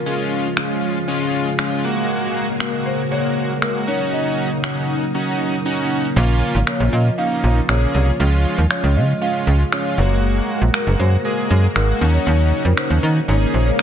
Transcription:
Already playing: string machine C#3
0.06 string machine F3 G#3 F4, analog polysynth G#3 C#4 F4, marimba G#4
0.57 analog polysynth G#3 C#4 F4, finger snap
1.08 analog polysynth G#3 C#4 F4
1.59 analog polysynth G#3 C#4 F4, finger snap
1.84 analog polysynth G#3 A#3 F#4, string machine A#3 F#4
2.60 analog polysynth G#3 A#3 F#4, marimba A#4, finger snap
2.86 marimba C5
3.11 analog polysynth G#3 A#3 F#4, marimba C#5
3.62 analog polysynth G#3 A#3 F#4, marimba A#4, finger snap
3.87 string machine F#3 A#3 D#4, analog polysynth C#4 D#4 F#4, marimba C#5
4.13 marimba D#5
4.64 analog polysynth C#4 D#4 F#4, finger snap
5.14 analog polysynth C#4 D#4 F#4
5.65 analog polysynth C#4 D#4 F#4
6.16 fm bass A#1, string machine F3 F4, analog polysynth A#3 C#4 F4
6.55 fm bass G#1
6.67 analog polysynth A#3 C#4 F4, marimba C#5, finger snap
6.80 fm bass A#1
6.93 fm bass A#2, marimba D#5
7.18 analog polysynth A#3 C#4 D#4, marimba F5
7.44 fm bass A#1
7.69 fm bass A#1, analog polysynth A#3 C#4 G#4, marimba C#5, finger snap
7.94 fm bass C2, marimba C#5
8.20 fm bass C#2, analog polysynth G#3 C#4 F4, string machine G#3
8.58 fm bass D#2
8.70 analog polysynth G#3 C#4 F4, marimba C#5, finger snap
8.83 fm bass C#2
8.96 fm bass C#3, marimba D#5
9.21 analog polysynth G#3 C#4 F4, marimba F5
9.47 fm bass C#2
9.72 analog polysynth G#3 C#4 F4, marimba C#5, finger snap
9.98 fm bass F#1, analog polysynth G#3 A#3 F#4, string machine A#3 F#4, marimba C#5
10.61 fm bass A#1
10.74 analog polysynth G#3 A#3 F#4, marimba A#4, finger snap
10.87 fm bass F#1
11.00 fm bass F#2, marimba C5
11.25 analog polysynth G#3 A#3 G#4, marimba A#4
11.50 fm bass F#2
11.63 marimba G#4
11.76 fm bass G#1, analog polysynth G#3 A#3 F#4, marimba A#4, finger snap
12.01 fm bass D#2, string machine C#3 F#3 D#4, analog polysynth C#4 D#4 F#4
12.14 marimba C#5
12.27 fm bass D#2, marimba C#5, swell
12.65 fm bass F2, marimba A#4
12.77 analog polysynth C#4 D#4 F#4, finger snap
12.90 fm bass D#2
13.03 fm bass D#3
13.28 fm bass G#1, string machine C#3 D#3 G#3, analog polysynth C#4 D#4 G#4, marimba C#5
13.54 fm bass A#1, marimba C5
13.67 marimba C#5
13.79 analog polysynth C#4 D#4, finger snap

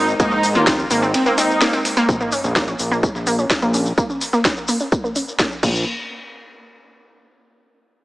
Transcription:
Already playing: analog synth bass G#1, analog synth pad G#3 D#4 A#4 C5, violin section D#4, analog polysynth D#4
0.08 shekere
0.20 analog synth bass G#2, synth arpeggio sound A#3, violin section D#4, analog polysynth D#4, kick, ride, tambourine, shekere
0.31 synth arpeggio sound C4, shekere
0.43 snare, open hi-hat, tambourine, shekere
0.55 analog synth bass D#2, synth arpeggio sound A#3, analog polysynth F4, violin section F4, snare, shekere
0.67 synth arpeggio sound C4, kick, snare, ride, tambourine, shekere
0.79 shekere
0.91 analog synth bass G#1, synth arpeggio sound A#3, open hi-hat, tambourine, shekere
1.02 synth arpeggio sound C4, shekere
1.14 violin section C4, analog polysynth C4, snare, ride, tambourine, shekere
1.26 synth arpeggio sound A#3, shekere
1.38 synth arpeggio sound C4, analog polysynth D#4, violin section D#4, snare, open hi-hat, tambourine, shekere
1.50 shekere
1.61 synth arpeggio sound A#3, snare, ride, tambourine, shekere
1.73 synth arpeggio sound C4, snare, tambourine, shekere
1.85 snare, open hi-hat, tambourine, shekere
1.96 synth arpeggio sound A#3, snare, tambourine, shekere
2.09 analog synth bass A#1, kick, tambourine, sub drop, shekere
2.20 synth arpeggio sound A#3, shekere
2.32 synth arpeggio sound C#4, open hi-hat, tambourine, shekere
2.44 analog synth bass A#1, snare, shekere
2.56 synth arpeggio sound A#3, kick, snare, tambourine, shekere
2.68 synth arpeggio sound C#4, closed hi-hat, shekere
2.79 analog synth bass A#1, open hi-hat, tambourine, shekere
2.91 synth arpeggio sound A#3, shekere
3.03 synth arpeggio sound C#4, kick, tambourine, shekere
3.15 analog synth bass A#1, snare, shekere
3.27 synth arpeggio sound A#3, open hi-hat, tambourine, shekere
3.39 synth arpeggio sound C#4, shekere
3.50 kick, snare, tambourine, shekere
3.62 analog synth bass A#1, synth arpeggio sound A#3, closed hi-hat, shekere
3.74 synth arpeggio sound C#4, open hi-hat, tambourine, shekere
3.86 shekere
3.98 synth arpeggio sound A#3, kick, tambourine, shekere
4.10 synth arpeggio sound C#4, shekere
4.21 snare, open hi-hat, tambourine, shekere
4.33 synth arpeggio sound A#3, snare, shekere
4.45 synth arpeggio sound C#4, kick, snare, tambourine, shekere
4.57 shekere
4.68 synth arpeggio sound A#3, open hi-hat, tambourine, shekere
4.80 synth arpeggio sound C#4, shekere
4.92 kick, tambourine, shekere
5.04 synth arpeggio sound A#3, shekere
5.16 synth arpeggio sound C#4, open hi-hat, tambourine, shekere
5.28 shekere
5.39 synth arpeggio sound A#3, kick, snare, tambourine, shekere
5.51 synth arpeggio sound C#4, snare, shekere
5.63 analog synth bass A#1, synth arpeggio sound A#3, kick, crash, shekere
5.75 shekere

